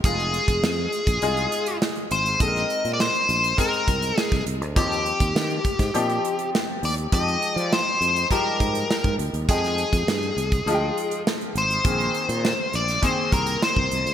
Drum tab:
HH |xxxx--xxxxxx-xxx|xxxx-xxxxxxx-xxx|xxxx-xxxxxxx--ox|xxxx--xxx-xx-xxx|
SD |----o-------o---|-o--o-------oo--|----o--o----o---|----o-------o---|
BD |o--o---o--------|o-------o-o--o--|o--o--oo--------|o-------o-o--o--|

HH |xxxx-xxxx-xx-xxx|xxxx--xxx-xx--xx|
SD |-o--o-------o---|----o--o----o---|
BD |o--o---o--------|o-------o-o--o--|